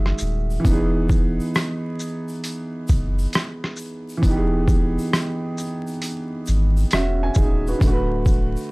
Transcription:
Already playing: F#1 D#3 G#3 F#4 G#4 E5
0.06 cross-stick
0.18 shaker
0.20 D#1, shaker
0.50 shaker
0.60 E3
0.64 E1 B3, kick, closed hi-hat, shaker
0.69 D#4
0.73 G#4
1.09 kick, shaker
1.11 shaker
1.40 shaker
1.55 cross-stick, closed hi-hat, shaker
2.00 shaker
2.01 shaker
2.28 shaker
2.44 closed hi-hat, shaker
2.88 shaker
2.89 F#1, kick, shaker
3.19 shaker
3.33 cross-stick, closed hi-hat, shaker
3.64 cross-stick
3.76 shaker
3.79 shaker
4.09 shaker
4.17 E3
4.22 E1 B3, kick, closed hi-hat, shaker
4.26 D#4
4.31 G4
4.37 G#4
4.68 kick, shaker
4.99 shaker
5.13 cross-stick, closed hi-hat, shaker
5.58 shaker
5.60 shaker
5.87 shaker
6.02 closed hi-hat, shaker
6.46 G#1, shaker
6.77 shaker
6.91 E1 C#4 F#4 E5, cross-stick, closed hi-hat, shaker
7.23 G#5
7.34 kick, shaker
7.37 D#1 D#4 G#4, shaker
7.67 F#4 B4, shaker
7.79 D1 D3, kick, closed hi-hat, shaker
7.83 A3
7.88 F#4
7.92 B4
8.25 kick, shaker
8.27 shaker
8.56 shaker

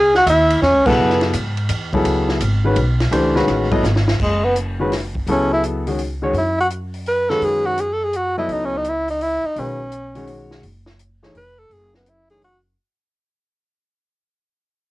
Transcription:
Already playing: C#2 G#4 G#5
0.14 F#4 F#5, snare
0.26 D#2 E4 E5, hi-hat pedal, ride
0.50 ride
0.62 E2 C#4 C#5, snare
0.74 C#2
0.85 B1 C#3 F#3 B3 E4 A4 B4, kick, crash
0.98 F#2
1.10 snare
1.21 snare, ride
1.33 G#2, hi-hat pedal, ride
1.57 ride
1.69 E2, hi-hat pedal, ride
1.93 C#3 F#3 B3 E4 A4, kick, ride
2.04 C#2, ride
2.29 snare
2.40 G#1, hi-hat pedal, ride
2.64 D#3 G#3 C#4 F#4 B4
2.76 B1, ride
3.00 snare, ride
3.11 C#2 E3 A3 D4 G4 C5, ride
3.35 D#3 G#3 C#4 F#4 B4, snare
3.48 A1, snare, hi-hat pedal, ride
3.71 F#3 B3 E4 A4 D#5, kick, ride
3.83 G#1, snare, hi-hat pedal
3.96 snare
4.08 snare
4.20 F#1 G#3, kick, crash
4.44 B3
4.56 closed hi-hat
4.80 D#3 G#3 C#4 F#4 B4
4.92 snare, open hi-hat
5.15 kick
5.27 C#2 C#3 F#3 B3 E4 A4, open hi-hat
5.31 C#4
5.53 E4
5.63 closed hi-hat
5.87 D#3 G#3 C#4 F#4 G#4, open hi-hat
5.99 open hi-hat
6.22 D#3 G#3 C#4 F#4 C#5
6.33 F#2, open hi-hat
6.38 E4
6.61 F#4
6.70 closed hi-hat
6.94 open hi-hat
7.06 B4, open hi-hat
7.29 D#3 G#3 C#4 F#4 A4 B4, snare
7.41 F#2 G#4, open hi-hat
7.66 F#4
7.77 G#4, closed hi-hat
7.93 A4
8.04 G#4
8.13 F#4, closed hi-hat
8.37 F#3 B3 E4 A4 D#5
8.48 C#2, open hi-hat
8.53 D#4
8.65 C#4
8.77 D#4
8.84 closed hi-hat
8.89 E4
9.08 D#4, open hi-hat
9.21 E4, open hi-hat
9.44 D#4, muted upright bass stroke
9.56 B1 D#3 G#3 C#4 F#4 B4, open hi-hat
9.92 closed hi-hat
10.15 D#3 G#3 C#4 F#4 C#5, open hi-hat
10.27 open hi-hat
10.51 snare
10.63 F#1, open hi-hat
10.86 snare
10.99 closed hi-hat
11.23 E3 A3 D#4 G#4 C#5, snare
11.35 F1 B4, open hi-hat
11.59 A4
11.70 F#1 G#4, open hi-hat
11.94 B3, snare
12.06 E4, closed hi-hat
12.29 E3 A3 D#4 G#4 C#5, open hi-hat
12.42 F#4, open hi-hat

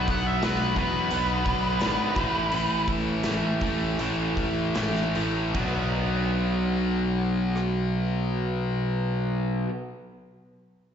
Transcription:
Already playing: B2 F#3 B3
0.08 B1 B3 D4 F#4 F#5, kick, open hi-hat
0.27 E5
0.42 B1 B2 F#3 B3 D4 F#4 B4, snare, open hi-hat
0.76 E2 B2 F#3 B3 D4 F#4 B4, kick, open hi-hat
1.11 B1 B2 F#3 B3 D4 F#4, open hi-hat
1.45 B1 B3 D4 F#4, kick, open hi-hat
1.79 G#1 B2 F#3 B3 D4 F#4, snare, open hi-hat
2.15 A1 A2 E3 A3 C#4 E4 A4, kick, open hi-hat
2.52 A1 A2 E3 A3, open hi-hat
2.88 A3 C#4 E4 A4, kick, open hi-hat
3.23 A1 A2 E3 A3 C#4 E4 A4, snare, open hi-hat
3.61 A1 A2 E3 A3 C#4 E4 A4, kick, open hi-hat
3.97 A1 A2 E3 A3 C#4 E4 A4, open hi-hat
4.36 A1 A3 C#4 E4 A4, kick, open hi-hat
4.74 A1 A2 E3 A3 C#4 E4 A4, snare, open hi-hat
4.96 snare
5.15 A1 A2 E3 A3, open hi-hat
5.48 B2
5.54 B1 B2 F#3 B3, kick, crash
5.59 D4
5.64 F#4
5.68 B4
7.56 cross-stick

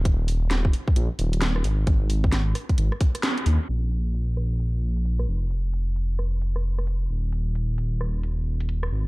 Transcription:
0.05 D#1, kick, closed hi-hat
0.28 open hi-hat
0.51 snare, closed hi-hat
0.65 kick
0.73 open hi-hat
0.88 kick
0.96 A#1, closed hi-hat
1.19 D#1, open hi-hat
1.33 closed hi-hat
1.42 snare, closed hi-hat
1.56 cross-stick
1.64 G#1, open hi-hat
1.87 G#1, kick, closed hi-hat
2.10 open hi-hat
2.24 kick
2.32 snare, closed hi-hat
2.55 cross-stick, open hi-hat
2.69 kick, closed hi-hat
2.78 G#1, closed hi-hat
2.92 cross-stick
3.01 kick, open hi-hat
3.15 cross-stick, closed hi-hat
3.23 snare, closed hi-hat
3.38 closed hi-hat
3.46 D#2, open hi-hat
3.69 A#1, closed hi-hat, crash
3.92 closed hi-hat
4.14 closed hi-hat
4.37 cross-stick
4.60 closed hi-hat
4.97 closed hi-hat
5.05 closed hi-hat
5.19 cross-stick
5.28 F1
5.51 closed hi-hat
5.73 closed hi-hat
5.96 closed hi-hat
6.19 cross-stick
6.42 closed hi-hat
6.56 cross-stick
6.79 cross-stick, closed hi-hat
6.87 closed hi-hat
7.10 D#1
7.32 closed hi-hat
7.55 closed hi-hat
7.78 closed hi-hat
8.01 cross-stick
8.23 closed hi-hat
8.60 closed hi-hat
8.69 closed hi-hat
8.83 cross-stick
8.92 G#1

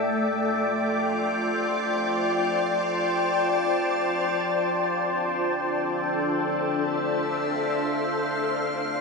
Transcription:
Already playing: A3 A4 D5 E5 G5
0.07 F4
0.59 C5
2.02 A5
4.44 D4
5.29 A4
6.30 E5
6.41 F5
8.82 A#3

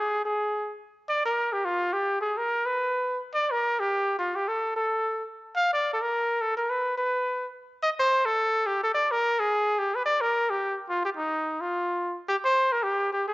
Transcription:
Already playing: G#4
0.25 G#4
1.09 D5
1.25 A#4
1.53 G4
1.65 F4
1.93 G4
2.21 G#4
2.37 A#4
2.66 B4
3.34 D5
3.51 A#4
3.80 G4
4.19 F4
4.36 G4
4.48 A4
4.76 A4
5.56 F5
5.73 D5
5.93 A4
6.02 A#4
6.41 A4
6.57 A#4
6.70 B4
6.98 B4
7.83 D#5
7.99 C5
8.26 A4
8.66 G4
8.83 A4
8.94 D5
9.11 A#4
9.40 G#4
9.79 G4
9.95 B4
10.06 D5
10.21 A#4
10.50 G4
10.89 F4
11.05 G4
11.17 D#4
11.61 F4
12.29 G4
12.45 C5
12.72 A#4
12.83 G4
13.13 G4
13.28 G#4

